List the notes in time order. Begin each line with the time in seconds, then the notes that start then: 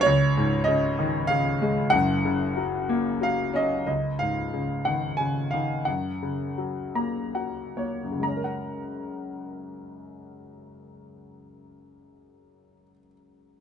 0.01 C#5
0.06 C#2
0.37 G#2
0.64 C#3 D#5
0.99 D#3
1.27 C#3 F5
1.62 G#3
1.90 F#1 F#2 F#5
2.25 C#3
2.57 F#3
2.89 A#3
3.21 F#3 F5
3.54 C#4 D#5
3.87 C#2 D#5
4.19 G#2 F5
4.54 C#3
4.85 D#3 F#5
5.17 C#3 G#5
5.51 D#3 F5
5.85 F#2 F#5
6.22 C#3
6.58 F#3
6.95 A#3 A#5
7.35 F#3 F#5
7.77 A#3 C#5
8.03 F#2
8.12 C#3
8.20 G#3 A#5
8.28 C#4
8.37 A#4
8.44 F#5